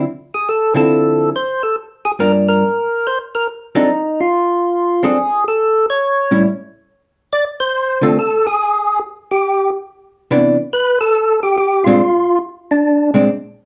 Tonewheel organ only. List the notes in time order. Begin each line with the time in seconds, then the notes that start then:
0.34 G#4
0.49 A4
0.77 A4
1.36 C5
1.63 A4
2.05 G#4
2.20 A#4
2.48 A#4
3.07 C5
3.35 A#4
3.77 D#4
4.20 F4
5.04 G#4
5.48 A4
5.90 C#5
7.33 D5
7.60 C5
8.03 A4
8.19 A4
8.47 G#4
9.31 G4
10.73 B4
11.01 A4
11.43 G4
11.58 G4
11.84 F4
12.71 D4